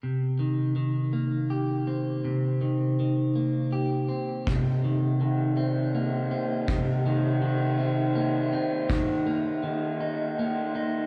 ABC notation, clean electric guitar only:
X:1
M:3/4
L:1/8
Q:1/4=81
K:Cm
V:1 name="Clean electric guitar"
C, E, E, B, G C | C, E, E, B, G C | C, E, E, C B, C | C, E, E, C B, C |
E, B, E, E B, E |]